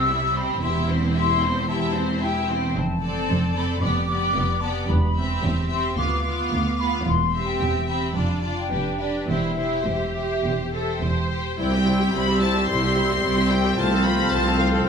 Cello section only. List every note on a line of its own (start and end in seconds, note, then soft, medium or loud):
0.00 0.58 C3 medium
0.62 2.71 E2 medium
2.75 3.20 F2 medium
3.29 3.73 F2 medium
3.82 4.26 F2 medium
4.35 4.80 F2 medium
4.89 5.34 E2 medium
5.43 5.89 E2 medium
5.98 6.43 D2 medium
6.52 6.98 D2 medium
7.07 7.52 E2 medium
7.61 8.07 E2 medium
8.15 8.62 F2 medium
8.71 9.19 F2 soft
9.29 9.78 E2 medium
9.87 10.35 E2 soft
10.45 10.93 E2 soft
11.02 11.50 E2 soft
11.59 12.08 C2 medium
12.14 12.62 C2 soft
12.69 13.17 C2 soft
13.23 13.71 C2 soft
13.77 14.25 C2 medium
14.32 14.80 C2 soft